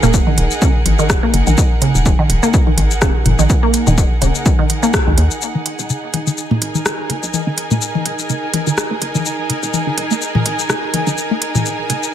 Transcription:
Already playing: D#4 G#4 A#4 F#5
0.03 D#1 A#3, mid tom, shaker
0.14 kick, shaker
0.27 D#3, high tom
0.38 D#1, closed hi-hat
0.51 shaker
0.62 C#3, kick, shaker
0.86 G#1, closed hi-hat, high tom
0.99 D#3, shaker
1.10 D#1, kick, cross-stick, shaker
1.23 A#3
1.34 F#1, closed hi-hat
1.47 A#1 D#3, high tom, shaker
1.58 kick, shaker
1.82 C#3, closed hi-hat
1.95 D#1, shaker
2.06 kick, high tom, shaker
2.19 D#3
2.30 D#1, closed hi-hat
2.43 A#3, shaker
2.54 kick, shaker
2.67 D#3, high tom
2.78 G#1, closed hi-hat
2.91 shaker
3.02 D#1 C#3, kick, cross-stick, shaker
3.26 F#1, closed hi-hat, mid tom, high tom
3.39 A#1 D#3, shaker
3.50 kick, shaker
3.63 A#3
3.74 closed hi-hat, shaker
3.87 D#1 D#3, mid tom, high tom, shaker
3.98 kick, shaker
4.22 D#1 C#3, closed hi-hat, shaker
4.35 shaker
4.46 kick, high tom, shaker
4.59 D#3
4.70 closed hi-hat
4.83 A#3, shaker
4.94 kick, cross-stick, shaker
5.07 C#2 D#3, high tom
5.18 D#2, closed hi-hat
5.31 shaker
5.42 D#4, shaker
5.51 G#4
5.55 D#3, high tom
5.66 closed hi-hat
5.79 D#1, shaker
5.90 C#3, shaker
6.14 D#1, closed hi-hat, high tom
6.27 D#3, shaker
6.38 shaker
6.44 G#5
6.51 A#3 A#4, mid tom
6.62 G#1, closed hi-hat
6.75 D#3, high tom, shaker
6.86 cross-stick, shaker
7.10 F#1 C#3, closed hi-hat
7.23 A#1, shaker
7.34 high tom, shaker
7.47 D#3
7.58 closed hi-hat
7.71 D#1 A#3, mid tom, shaker
7.82 shaker
7.95 D#3, high tom
8.06 D#1, closed hi-hat
8.19 shaker
8.30 C#3, shaker
8.54 G#1, closed hi-hat, high tom
8.67 D#3, shaker
8.78 cross-stick, shaker
8.91 A#3
9.02 F#1, closed hi-hat
9.15 A#1 D#3, high tom, shaker
9.26 shaker
9.50 C#3, closed hi-hat
9.63 D#1, shaker
9.74 high tom, shaker
9.87 D#3
9.98 D#1, closed hi-hat
10.11 A#3, shaker
10.22 shaker
10.35 D#3, mid tom, high tom
10.46 G#1, closed hi-hat
10.59 shaker
10.70 C#3, cross-stick, shaker
10.94 F#1, closed hi-hat, high tom
11.07 A#1 D#3, shaker
11.18 shaker
11.31 A#3
11.42 closed hi-hat
11.55 D#1 D#3, mid tom, high tom, shaker
11.66 shaker
11.90 D#1 C#3, closed hi-hat, shaker
12.03 shaker

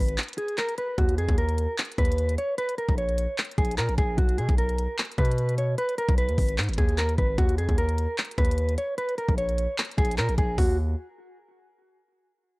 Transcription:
Already playing: B4
0.00 G#1
0.09 closed hi-hat
0.18 clap, closed hi-hat
0.23 closed hi-hat
0.29 closed hi-hat
0.33 closed hi-hat
0.38 G#4, closed hi-hat
0.49 closed hi-hat
0.58 A#4, clap, closed hi-hat
0.69 closed hi-hat
0.78 B4, closed hi-hat
0.98 D#2 F#4, kick, closed hi-hat
1.09 closed hi-hat
1.18 F2 G#4, closed hi-hat
1.29 D#2, kick, closed hi-hat
1.38 A#4, closed hi-hat
1.49 closed hi-hat
1.58 closed hi-hat
1.78 clap, closed hi-hat
1.85 closed hi-hat
1.92 closed hi-hat
1.98 D#2 B4, kick, closed hi-hat
2.05 closed hi-hat
2.12 closed hi-hat
2.18 closed hi-hat
2.29 closed hi-hat
2.38 C#5, closed hi-hat
2.58 B4, closed hi-hat
2.69 closed hi-hat
2.78 A#4, closed hi-hat
2.89 A#1, kick, closed hi-hat
2.98 C#5, closed hi-hat
3.09 closed hi-hat
3.18 closed hi-hat
3.38 clap, closed hi-hat
3.45 closed hi-hat
3.51 closed hi-hat
3.58 A#1 G#4, kick, closed hi-hat
3.65 closed hi-hat
3.71 closed hi-hat
3.78 A#2 A#4, clap, closed hi-hat
3.89 A#1, closed hi-hat
3.98 A#1 G#4, kick, closed hi-hat
4.18 B1 F#4, kick, closed hi-hat
4.29 closed hi-hat
4.38 B2 G#4, closed hi-hat
4.49 B1, kick, closed hi-hat
4.58 A#4, closed hi-hat
4.69 closed hi-hat
4.78 closed hi-hat
4.98 clap, closed hi-hat
5.05 closed hi-hat
5.11 closed hi-hat
5.18 B2 B4, kick, closed hi-hat
5.25 closed hi-hat
5.31 closed hi-hat
5.38 closed hi-hat
5.49 closed hi-hat
5.58 C#5, closed hi-hat
5.78 B4, closed hi-hat
5.89 closed hi-hat
5.98 A#4, closed hi-hat
6.09 B1, kick, closed hi-hat
6.18 B4, closed hi-hat
6.29 D#2, closed hi-hat
6.38 G#1, kick, closed hi-hat, open hi-hat
6.49 closed hi-hat
6.58 G#2, clap, closed hi-hat
6.64 closed hi-hat
6.69 G#1, closed hi-hat
6.74 closed hi-hat
6.78 D#2 G#4, kick, closed hi-hat
6.89 closed hi-hat
6.98 A#4, clap, closed hi-hat
7.09 closed hi-hat
7.18 G#1 B4, kick, closed hi-hat
7.38 D#2 F#4, kick, closed hi-hat
7.49 closed hi-hat
7.58 F2 G#4, closed hi-hat
7.69 D#2, kick, closed hi-hat
7.78 A#4, closed hi-hat
7.89 closed hi-hat
7.98 closed hi-hat
8.18 clap, closed hi-hat
8.25 closed hi-hat
8.31 closed hi-hat
8.38 D#2 B4, kick, closed hi-hat
8.45 closed hi-hat
8.51 closed hi-hat
8.58 closed hi-hat
8.69 closed hi-hat
8.78 C#5, closed hi-hat
8.98 B4, closed hi-hat
9.09 closed hi-hat
9.18 A#4, closed hi-hat
9.29 A#1, kick, closed hi-hat
9.38 C#5, closed hi-hat
9.49 closed hi-hat
9.58 closed hi-hat
9.78 clap, closed hi-hat
9.85 closed hi-hat
9.91 closed hi-hat
9.98 A#1 G#4, kick, closed hi-hat
10.05 closed hi-hat
10.11 closed hi-hat
10.18 A#2 A#4, clap, closed hi-hat
10.29 A#1, closed hi-hat
10.38 A#1 G#4, kick, closed hi-hat
10.58 D#2 F#4, kick, open hi-hat

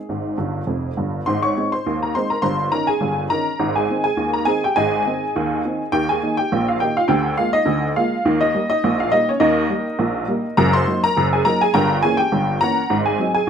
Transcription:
Already playing: G#4
0.09 G#1 G#2
0.38 G1 G2
0.67 F1 F2
0.97 G1 G2
1.26 G#1 G#2 C5 C6
1.43 C#5 C#6
1.57 G#3 C4 D#4
1.72 C5 C6
1.86 D#2 D#3
2.03 A#4 A#5
2.15 G#3 C4 D#4 C5 C6
2.30 A#4 A#5
2.42 G1 G2 C5 C6
2.72 D#3 C#4 D#4 A#4 A#5
2.87 G#4 G#5
3.01 G1 G2
3.30 D#3 C#4 D#4 A#4 A#5
3.59 G#1 G#2
3.76 G#4 G#5
3.90 D#3 C4 D#4
4.04 G#4 G#5
4.17 D#2 D#3
4.33 A#4 A#5
4.45 D#3 C4 D#4 G#4 G#5
4.64 G4 G5
4.76 G#1 G#2 G#4 D#5 G#5
5.07 D#3 C4 D#4
5.36 D#2 D#3
5.65 D#3 C4 D#4
5.92 D#2 D#3 G4 G5
6.09 G#4 G#5
6.23 D#3 A#3 D#4
6.37 G4 G5
6.52 A#1 A#2
6.68 F4 F5
6.80 D#3 A#3 D#4 G4 G5
6.97 F4 F5
7.08 D2 D3 G4 G5
7.38 G#3 A#3 F4 F5
7.53 D#4 D#5
7.65 D2 D3
7.96 G#3 A#3 F4 F5
8.25 D#2 D#3
8.41 D#4 D#5
8.55 G3 A#3
8.70 D#4 D#5
8.84 A#1 A#2
9.00 F4 F5
9.12 G3 A#3 D#4 D#5
9.29 C#4 C#5
9.40 D#2 D#3 D#4 A#4 D#5
9.70 G3 A#3
9.99 A#1 A#2
10.28 G3 A#3
10.57 F#1 F#2 A#4 A#5
10.73 C5 C6
10.88 F#3 A#3 D#4
11.04 A#4 A#5
11.17 F#1 F#2
11.33 G#4 G#5
11.45 F#3 A#3 D#4 A#4 A#5
11.61 G#4 G#5
11.74 G1 G2 A#4 G5 A#5
12.03 E3 A#3 C#4 G#4 G#5
12.17 G4 G5
12.32 G1 G2
12.61 E3 A#3 C#4 A#4 F#5 A#5
12.90 G#1 G#2
13.06 G#4 G#5
13.20 F#3 C4 D#4
13.35 G#4 G#5

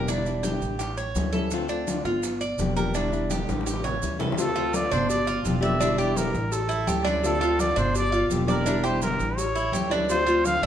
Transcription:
Already playing: E1
0.07 D3 G3 D4 E4, high bongo, high conga, maracas
0.26 G3 D4 E4, high bongo, high conga, maracas
0.43 D3 G3 D4 E4 G4, high bongo, high conga, maracas
0.62 A1, high bongo, high conga, maracas
0.79 G4, muted nylon-string guitar stroke, high bongo, high conga, maracas
0.97 C#5, high conga, maracas
1.15 D2 E3 G3 C#4 E4, high bongo, low bongo, high conga, maracas
1.33 G3 C#4 E4 A4, high bongo, high conga, maracas
1.51 D3 A3 C4 F4, high bongo, high conga, maracas
1.69 A3 C4 D4 F4, high bongo, high conga, maracas
1.87 D3 A3 C4 F4, high bongo, high conga, maracas
2.05 G1 F4, high bongo, high conga, maracas
2.23 muted nylon-string guitar stroke, high bongo, high conga, maracas
2.41 D5, high conga, maracas
2.58 E1 F3 A#3 D4 G4, high bongo, low bongo, high conga, maracas
2.76 F3 A#3 D4 G4 A#4, high bongo, high conga, maracas
2.94 D3 G3 D4 E4, high bongo, high conga, maracas
3.12 G3 D4 E4, high bongo, high conga, maracas
3.30 D3 G3 D4 E4 G4, high bongo, high conga, maracas
3.49 A1, high bongo, high conga, maracas
3.61 high bongo
3.66 G4, muted nylon-string guitar stroke, maracas
3.73 low bongo
3.84 C#5, low bongo, low conga, maracas
4.02 D2 E3 G3 C#4 E4, maracas
4.19 G3 C#4 E4 A4, low bongo, low conga, maracas
4.32 low bongo
4.37 D3 A3 C4 F4 A4, cowbell, high conga, maracas
4.56 A3 C4 F4, high conga, maracas
4.73 D3 A3 C4 F4 D5, cowbell, high conga, maracas
4.91 G1 D4 C5, low conga, maracas
5.09 D5, muted nylon-string guitar stroke, cowbell, high conga, maracas
5.27 F4, high conga, maracas
5.43 E1 F3 A#3 D4 G4, cowbell, high conga, maracas
5.61 F3 A#3 D4 G4 D5 E5, cowbell, high conga, maracas
5.79 D3 G3 D4 E4, cowbell, high conga, maracas
5.98 G3 D4 E4 G4 D5, high conga, maracas
6.16 D3 G3 D4 E4 A#4, cowbell, high conga, maracas
6.34 A1, high conga, maracas
6.51 A4, muted nylon-string guitar stroke, cowbell, high conga, maracas
6.69 E4, high conga, maracas
6.86 D2 E3 G3 C#4 E4 G4, cowbell, high conga, maracas
7.05 G3 C#4 D4 E4, cowbell, high conga, maracas
7.23 D3 A3 C4 F4 A4, cowbell, high conga, maracas
7.41 A3 C4 F4, high conga, maracas
7.59 D3 A3 C4 F4 D5, cowbell, high conga, maracas
7.76 G1 D4 C5, low conga, maracas
7.95 D5, muted nylon-string guitar stroke, cowbell, high conga, maracas
8.12 F4, high conga, maracas
8.30 E1 F3 A#3 D4 G4, cowbell, high conga, maracas
8.47 F3 A#3 D4 G4 A#4 D5, cowbell, high conga, maracas
8.65 D3 G3 D4 E4, cowbell, high conga, maracas
8.83 G3 D4 E4 G4 C5, maracas
9.02 D3 G3 D4 E4 A#4, cowbell, high conga, maracas
9.19 A1, high conga, maracas
9.37 C#5, muted nylon-string guitar stroke, cowbell, high conga, maracas
9.55 E4, high conga, maracas
9.72 D2 E3 G3 C#4 E4 G4, cowbell, high conga, maracas
9.90 G3 C#4 D4 E4, cowbell, high conga, maracas
10.09 D3 A3 C4 F4 C5, cowbell, high conga, maracas
10.27 A3 C4 F4, high conga, maracas
10.45 D3 A3 C4 F4 F5, cowbell, high conga, maracas
10.62 G1, low conga

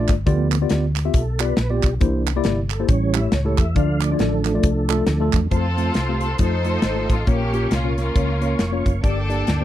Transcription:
Already playing: A3 D4 F4 D5
0.09 G1, kick, snare, clap, closed hi-hat
0.26 D2 D3 F3 A3 B3 F4 G4 D5, kick, closed hi-hat
0.52 clap, closed hi-hat
0.61 B3 F4 G4 D5
0.69 D2, snare, closed hi-hat
0.96 snare, clap, closed hi-hat
1.05 B3 F4 G4 E5
1.14 B1 A4, kick, closed hi-hat
1.40 B3 F4 G4 D5, clap, closed hi-hat
1.44 B4
1.57 A#1, snare, closed hi-hat
1.70 B3 F4 G4 D5
1.83 B1, kick, snare, clap, closed hi-hat
2.00 C2 C3 E3 A#3 D4 E4 G4 C5, kick, closed hi-hat
2.27 clap, closed hi-hat
2.36 A#3 E4 G4 D5
2.44 G1, snare, closed hi-hat
2.70 A4, clap, closed hi-hat
2.80 A#3 E4 G4 C5
2.88 A1 A2 E3 G3 C#4 C#5, kick, closed hi-hat
3.14 A3 E4 G4 C#5 E5, clap, closed hi-hat
3.32 C#2 C#5, snare, closed hi-hat
3.45 A3 E4 G4 A4
3.58 E2 E5, kick, clap, closed hi-hat
3.75 D2 D3 F3 A3 D4 F4 D5 F5, kick, closed hi-hat
4.01 D5, clap, closed hi-hat
4.11 A3 D4 F4 G#4 D5
4.19 A1 A4, snare, closed hi-hat
4.45 snare, clap, closed hi-hat
4.54 A3 D4 F4 D5
4.63 C2, kick, closed hi-hat
4.89 A3 D4 F4 A4, clap, closed hi-hat
5.06 D2, snare, closed hi-hat
5.20 A3 D4 F4 A4
5.33 E2, kick, snare, clap, closed hi-hat
5.51 F2 A3 C4 F4 A4 C5 F5 C6, kick, closed hi-hat
5.77 A3 C4 F4 C5, closed hi-hat
5.94 C2, snare, closed hi-hat
6.08 A3 C4 F4 G4
6.21 A4, closed hi-hat
6.38 F2 A3 D#4 F4 A4 C5 D#5, kick, closed hi-hat
6.65 A3 D#4 F4 C5, closed hi-hat
6.82 G#1, snare, closed hi-hat
6.95 A3 D#4 F4 C5
7.10 A1 F4, kick, closed hi-hat
7.27 A#1 A#2 A#3 C#4 F4 G4 C#5 C#6, kick, closed hi-hat
7.53 A#3 C#4 F4 G4, closed hi-hat
7.71 C2 F4, snare, closed hi-hat
7.84 A#3 C#4 F4 C#5
7.98 A#3 C#4 F4, snare, closed hi-hat
8.15 C#2 A#3 C#4 F4 C#5, kick, closed hi-hat
8.41 A#3 C#4 F4 C#5, closed hi-hat
8.59 F1, snare, closed hi-hat
8.72 A#3 C#4 F4 C#5
8.86 F#1, kick, closed hi-hat
9.03 G1 G2 A#3 D4 G4 A4 D5 G5 D6, kick, closed hi-hat
9.29 A#3 D4 G4 D5, closed hi-hat
9.47 D2, snare, closed hi-hat
9.60 A#3 D4 G4

